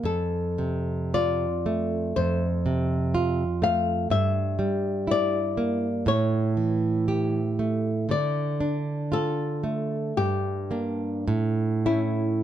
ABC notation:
X:1
M:4/4
L:1/8
Q:1/4=59
K:F
V:1 name="Nylon-string guitar"
A2 d2 c3 f | e2 d2 ^c4 | d2 A2 G3 E |]
V:2 name="Nylon-string guitar"
F,, C, F A, F,, C, F A, | G,, G, E B, A,, E, G A, | D, D F A, G,, [B,D] A,, [A,^C] |]